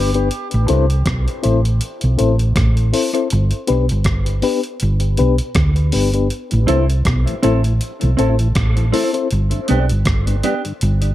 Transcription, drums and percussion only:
0.14 closed hi-hat soft
0.31 closed hi-hat medium
0.51 closed hi-hat soft
0.68 closed hi-hat medium
0.90 closed hi-hat medium
1.06 kick medium
1.06 cross-stick loud
1.06 closed hi-hat medium
1.28 closed hi-hat soft
1.44 closed hi-hat medium
1.65 closed hi-hat soft
1.81 closed hi-hat medium
2.01 closed hi-hat medium
2.19 closed hi-hat medium
2.39 closed hi-hat medium
2.56 kick loud
2.56 cross-stick medium
2.56 closed hi-hat medium
2.77 closed hi-hat soft
2.94 open hi-hat medium
3.15 closed hi-hat medium
3.30 closed hi-hat medium
3.51 closed hi-hat medium
3.67 closed hi-hat medium
3.89 closed hi-hat medium
4.04 kick medium
4.04 cross-stick medium
4.04 closed hi-hat medium
4.26 closed hi-hat medium
4.42 open hi-hat medium
4.64 closed hi-hat soft
4.80 closed hi-hat medium
5.00 closed hi-hat soft
5.17 closed hi-hat medium
5.38 closed hi-hat medium
5.55 kick loud
5.55 cross-stick loud
5.55 closed hi-hat medium
5.76 closed hi-hat soft
5.92 open hi-hat medium
6.14 closed hi-hat soft
6.30 closed hi-hat medium
6.51 closed hi-hat medium
6.68 closed hi-hat medium
6.90 closed hi-hat medium
7.05 kick medium
7.05 cross-stick medium
7.05 closed hi-hat medium
7.27 closed hi-hat medium
7.43 closed hi-hat medium
7.64 closed hi-hat soft
7.81 closed hi-hat medium
8.01 closed hi-hat medium
8.19 closed hi-hat medium
8.39 closed hi-hat medium
8.55 kick medium
8.55 cross-stick loud
8.55 closed hi-hat medium
8.77 closed hi-hat soft
8.94 open hi-hat medium
9.14 closed hi-hat medium
9.31 closed hi-hat medium
9.51 closed hi-hat medium
9.68 closed hi-hat medium
9.89 closed hi-hat medium
10.05 kick medium
10.05 cross-stick loud
10.05 closed hi-hat medium
10.27 closed hi-hat medium
10.43 closed hi-hat medium
10.65 closed hi-hat soft
10.81 closed hi-hat medium
11.02 closed hi-hat medium

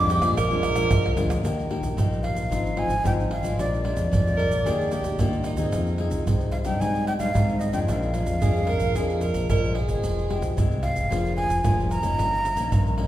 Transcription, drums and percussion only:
0.10 pandeiro medium
0.10 shaker medium
0.22 pandeiro medium
0.22 tamborim medium
0.22 shaker medium
0.22 surdo soft
0.37 pandeiro medium
0.37 tamborim medium
0.37 shaker medium
0.37 surdo medium
0.52 pandeiro soft
0.52 shaker soft
0.63 pandeiro medium
0.63 tamborim medium
0.63 shaker medium
0.76 pandeiro medium
0.76 tamborim medium
0.76 shaker medium
0.76 surdo soft
0.91 pandeiro medium
0.91 tamborim medium
0.91 shaker medium
0.91 surdo loud
1.06 pandeiro soft
1.06 tamborim medium
1.06 shaker soft
1.17 pandeiro medium
1.17 shaker medium
1.30 pandeiro medium
1.30 tamborim medium
1.30 shaker medium
1.30 surdo soft
1.45 pandeiro medium
1.45 shaker medium
1.45 surdo medium
1.59 pandeiro soft
1.59 shaker soft
1.71 pandeiro medium
1.83 pandeiro medium
1.83 shaker medium
1.83 surdo soft
1.98 pandeiro medium
1.98 shaker medium
1.98 surdo loud
2.13 pandeiro soft
2.13 shaker soft
2.24 pandeiro medium
2.36 pandeiro medium
2.36 shaker medium
2.36 surdo soft
2.52 pandeiro medium
2.52 shaker medium
2.52 surdo medium
2.66 pandeiro soft
2.66 shaker soft
2.66 surdo soft
2.77 pandeiro medium
2.90 pandeiro medium
2.90 shaker medium
2.90 surdo soft
3.05 pandeiro medium
3.05 shaker medium
3.05 surdo medium
3.20 pandeiro soft
3.20 shaker soft
3.31 pandeiro medium
3.44 pandeiro medium
3.44 shaker medium
3.44 surdo soft
3.59 pandeiro medium
3.59 shaker medium
3.59 surdo medium
3.74 pandeiro soft
3.74 shaker soft
3.85 pandeiro medium
3.97 pandeiro medium
3.97 shaker medium
3.97 surdo soft
4.13 pandeiro medium
4.13 shaker medium
4.13 surdo loud
4.27 pandeiro soft
4.27 shaker soft
4.39 pandeiro medium
4.51 pandeiro medium
4.51 shaker medium
4.51 surdo soft
4.66 pandeiro medium
4.66 shaker medium
4.66 surdo medium
4.81 pandeiro soft
4.81 shaker soft
4.81 surdo soft
4.92 pandeiro medium
4.92 shaker medium
5.04 pandeiro medium
5.04 shaker medium
5.04 surdo soft
5.19 pandeiro medium
5.19 shaker medium
5.19 surdo medium
5.33 pandeiro soft
5.33 shaker soft
5.44 pandeiro medium
5.44 shaker medium
5.57 pandeiro medium
5.57 shaker medium
5.57 surdo soft
5.72 pandeiro medium
5.72 shaker medium
5.72 surdo medium
5.86 pandeiro soft
5.86 shaker soft
5.98 pandeiro medium
6.11 pandeiro medium
6.11 shaker medium
6.11 surdo soft
6.27 pandeiro medium
6.27 shaker medium
6.27 surdo loud
6.41 pandeiro soft
6.41 shaker soft
6.52 pandeiro medium
6.65 pandeiro medium
6.65 shaker medium
6.65 surdo soft
6.81 pandeiro medium
6.81 shaker medium
6.81 surdo medium
6.95 pandeiro soft
6.95 shaker soft
7.07 pandeiro medium
7.20 pandeiro medium
7.20 shaker medium
7.20 surdo soft
7.35 pandeiro medium
7.35 shaker medium
7.35 surdo loud
7.49 pandeiro soft
7.49 shaker soft
7.61 pandeiro medium
7.61 shaker medium
7.73 pandeiro medium
7.73 shaker medium
7.73 surdo soft
7.88 pandeiro medium
7.88 shaker medium
7.88 surdo medium
8.02 pandeiro soft
8.02 shaker soft
8.14 pandeiro medium
8.14 shaker medium
8.26 pandeiro medium
8.26 shaker medium
8.26 surdo soft
8.42 pandeiro medium
8.42 shaker medium
8.42 surdo medium
8.56 pandeiro soft
8.56 shaker soft
8.67 pandeiro medium
8.80 pandeiro medium
8.80 shaker medium
8.80 surdo soft
8.95 pandeiro medium
8.95 shaker medium
8.95 surdo medium
9.10 pandeiro soft
9.10 shaker soft
9.21 pandeiro medium
9.21 shaker medium
9.34 pandeiro medium
9.34 shaker medium
9.34 surdo soft
9.50 pandeiro medium
9.50 shaker medium
9.50 surdo medium
9.64 pandeiro soft
9.64 shaker soft
9.75 pandeiro medium
9.88 pandeiro medium
9.88 shaker medium
9.88 surdo soft
10.03 pandeiro medium
10.03 shaker medium
10.03 surdo medium
10.19 pandeiro soft
10.19 shaker soft
10.30 pandeiro medium
10.42 pandeiro medium
10.42 shaker medium
10.42 surdo soft
10.58 pandeiro medium
10.58 shaker medium
10.58 surdo loud
10.71 pandeiro soft
10.71 shaker soft
10.83 pandeiro medium
10.96 pandeiro medium
10.96 shaker medium
10.96 surdo soft
11.12 pandeiro medium
11.12 shaker medium
11.12 surdo medium
11.26 pandeiro soft
11.26 shaker soft
11.38 pandeiro medium
11.50 pandeiro medium
11.50 shaker medium
11.50 surdo soft
11.64 pandeiro medium
11.64 shaker medium
11.64 surdo loud
11.80 pandeiro soft
11.80 shaker soft
11.91 pandeiro medium
11.91 shaker medium
12.03 pandeiro medium
12.03 shaker medium
12.03 surdo soft
12.19 pandeiro medium
12.19 shaker medium
12.19 surdo medium
12.33 pandeiro soft
12.33 shaker soft
12.45 pandeiro medium
12.45 shaker medium
12.57 pandeiro medium
12.57 shaker medium
12.57 surdo soft
12.72 pandeiro medium
12.72 shaker medium
12.72 surdo loud
12.87 pandeiro soft
12.87 shaker soft
12.98 pandeiro medium

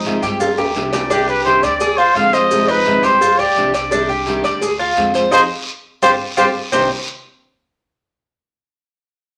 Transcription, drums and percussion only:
0.05 cowbell medium
0.05 short guiro medium
0.05 maracas soft
0.23 cowbell medium
0.23 short guiro medium
0.23 maracas medium
0.40 cowbell loud
0.40 high bongo medium
0.40 long guiro medium
0.40 maracas loud
0.58 high bongo loud
0.58 maracas soft
0.75 cowbell medium
0.75 low bongo medium
0.75 short guiro medium
0.75 maracas soft
0.93 cowbell medium
0.93 low bongo loud
0.93 short guiro medium
0.93 maracas medium
1.10 cowbell loud
1.10 long guiro medium
1.10 maracas medium
1.29 maracas soft
1.45 cowbell medium
1.45 short guiro medium
1.45 maracas soft
1.63 cowbell medium
1.63 short guiro medium
1.63 maracas medium
1.80 cowbell loud
1.80 long guiro medium
1.80 maracas medium
1.99 maracas soft
2.16 cowbell medium
2.16 short guiro medium
2.16 maracas soft
2.33 cowbell medium
2.33 short guiro medium
2.33 maracas medium
2.50 cowbell loud
2.50 long guiro medium
2.50 maracas medium
2.69 maracas soft
2.86 cowbell medium
2.86 short guiro medium
2.86 maracas soft
3.04 cowbell medium
3.04 short guiro medium
3.04 maracas medium
3.21 cowbell loud
3.21 long guiro medium
3.21 maracas loud
3.39 maracas soft
3.56 cowbell medium
3.56 short guiro medium
3.56 maracas soft
3.74 cowbell medium
3.74 short guiro medium
3.74 maracas medium
3.91 cowbell loud
3.91 long guiro medium
3.91 maracas medium
4.10 maracas soft
4.26 cowbell medium
4.26 short guiro medium
4.26 maracas soft
4.44 cowbell medium
4.44 short guiro medium
4.44 maracas medium
4.61 cowbell loud
4.61 long guiro medium
4.61 maracas loud
4.80 maracas soft
4.97 cowbell medium
4.97 short guiro medium
4.97 maracas soft
5.14 cowbell medium
5.14 short guiro medium
5.14 maracas medium
5.32 cowbell loud
5.32 long guiro medium
5.32 maracas loud
6.02 cowbell loud
6.02 long guiro loud
6.02 maracas loud
6.37 cowbell loud
6.37 long guiro loud
6.37 maracas loud
6.73 low bongo medium
6.73 long guiro loud
6.73 maracas loud

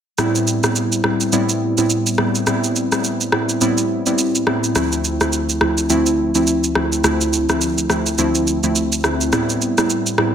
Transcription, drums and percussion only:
0.18 cross-stick medium
0.18 shaker medium
0.35 shaker soft
0.47 shaker medium
0.64 cross-stick medium
0.64 shaker medium
0.76 shaker medium
0.92 shaker soft
1.04 cross-stick medium
1.21 shaker soft
1.33 shaker medium
1.49 shaker medium
1.78 shaker soft
1.90 shaker medium
2.07 shaker medium
2.18 cross-stick medium
2.35 shaker soft
2.47 cross-stick medium
2.47 shaker medium
2.64 shaker medium
2.76 shaker medium
2.92 cross-stick medium
2.92 shaker medium
3.04 shaker medium
3.21 shaker medium
3.32 cross-stick medium
3.49 shaker soft
3.61 shaker medium
3.78 shaker medium
4.06 shaker soft
4.18 shaker medium
4.35 shaker medium
4.47 cross-stick medium
4.64 shaker soft
4.76 cross-stick medium
4.76 shaker medium
4.92 shaker soft
5.04 shaker medium
5.21 cross-stick medium
5.21 shaker medium
5.33 shaker medium
5.49 shaker soft
5.61 cross-stick medium
5.78 shaker soft
5.90 shaker medium
6.06 shaker medium
6.35 shaker soft
6.47 shaker medium
6.64 shaker medium
6.75 cross-stick medium
6.92 shaker soft
7.04 cross-stick medium
7.04 shaker medium
7.21 shaker soft
7.33 shaker medium
7.49 cross-stick medium
7.49 shaker medium
7.61 shaker medium
7.78 shaker medium
7.90 cross-stick medium
7.90 shaker medium
8.06 shaker soft
8.18 shaker medium
8.35 shaker medium
8.47 shaker soft
8.63 shaker soft
8.76 shaker medium
8.92 shaker medium
9.04 cross-stick medium
9.04 shaker soft
9.21 shaker soft
9.33 cross-stick loud
9.33 shaker medium
9.49 shaker soft
9.62 shaker medium
9.78 cross-stick medium
9.78 shaker medium
9.90 shaker medium
10.06 shaker medium
10.18 cross-stick medium

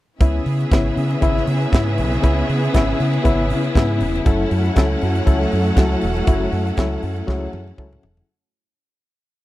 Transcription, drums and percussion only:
0.21 kick loud
0.21 closed hi-hat medium
0.46 open hi-hat medium
0.61 closed hi-hat medium
0.71 kick loud
0.71 snare loud
0.71 closed hi-hat medium
0.97 open hi-hat medium
1.11 closed hi-hat soft
1.22 kick medium
1.22 closed hi-hat medium
1.37 snare soft
1.47 open hi-hat medium
1.62 closed hi-hat soft
1.73 kick loud
1.73 snare loud
1.73 closed hi-hat medium
1.98 open hi-hat medium
2.13 closed hi-hat soft
2.23 kick loud
2.23 closed hi-hat medium
2.49 open hi-hat medium
2.64 closed hi-hat soft
2.74 kick loud
2.74 snare loud
2.74 closed hi-hat medium
3.00 open hi-hat medium
3.14 closed hi-hat soft
3.25 kick loud
3.25 closed hi-hat medium
3.50 open hi-hat medium
3.64 closed hi-hat soft
3.75 kick loud
3.75 snare loud
3.75 closed hi-hat medium
4.01 open hi-hat medium
4.16 closed hi-hat soft
4.26 kick loud
4.26 closed hi-hat medium
4.51 open hi-hat medium
4.66 closed hi-hat soft
4.76 kick loud
4.76 snare loud
4.76 closed hi-hat medium
5.02 open hi-hat medium
5.15 closed hi-hat medium
5.27 kick medium
5.27 closed hi-hat medium
5.42 snare soft
5.52 open hi-hat medium
5.66 closed hi-hat soft
5.77 kick loud
5.77 snare loud
5.77 closed hi-hat medium
6.01 open hi-hat medium
6.17 closed hi-hat soft
6.27 kick loud
6.27 closed hi-hat medium
6.52 open hi-hat medium
6.67 closed hi-hat soft
6.77 kick loud
6.77 snare loud
6.77 closed hi-hat medium
7.03 open hi-hat medium
7.16 closed hi-hat soft
7.28 kick loud
7.28 snare medium
7.53 high tom medium
7.68 high tom medium
7.78 kick loud
7.93 mid tom medium
8.03 floor tom loud
8.17 floor tom medium

